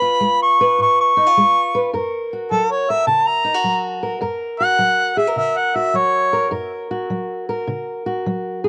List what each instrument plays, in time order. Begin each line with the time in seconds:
Already playing: steel-string acoustic guitar C#3 B4, harmonica B5
0.02 steel-string acoustic guitar F4
0.20 steel-string acoustic guitar G#3
0.42 harmonica C#6
0.61 steel-string acoustic guitar B4
0.78 steel-string acoustic guitar G#2, harmonica C#6
1.01 harmonica C#6
1.17 steel-string acoustic guitar D#4
1.27 steel-string acoustic guitar F4
1.37 steel-string acoustic guitar G#3
1.75 steel-string acoustic guitar B4
1.94 steel-string acoustic guitar F#2 A#4
2.33 steel-string acoustic guitar F#4
2.51 steel-string acoustic guitar F#3, harmonica A4
2.71 harmonica C#5
2.90 steel-string acoustic guitar A#4, harmonica E5
3.07 steel-string acoustic guitar C#3, harmonica A5
3.28 harmonica A#5
3.45 steel-string acoustic guitar D#4
3.54 steel-string acoustic guitar F#4
3.64 steel-string acoustic guitar F#3
4.03 steel-string acoustic guitar A#4
4.21 steel-string acoustic guitar F#2 A#4
4.60 steel-string acoustic guitar F#4, harmonica F#5
4.79 steel-string acoustic guitar F#3
5.17 steel-string acoustic guitar G#4, harmonica E5
5.27 steel-string acoustic guitar A#4
5.36 steel-string acoustic guitar C#3, harmonica E5
5.57 harmonica F#5
5.75 steel-string acoustic guitar F#4, harmonica E5
5.93 steel-string acoustic guitar F#3, harmonica C#5
6.33 steel-string acoustic guitar A#4
6.51 steel-string acoustic guitar F#2 A#4
6.91 steel-string acoustic guitar F#4
7.10 steel-string acoustic guitar F#3
7.49 steel-string acoustic guitar A#4
7.67 steel-string acoustic guitar C#3
8.06 steel-string acoustic guitar F#4
8.26 steel-string acoustic guitar F#3
8.64 steel-string acoustic guitar G#4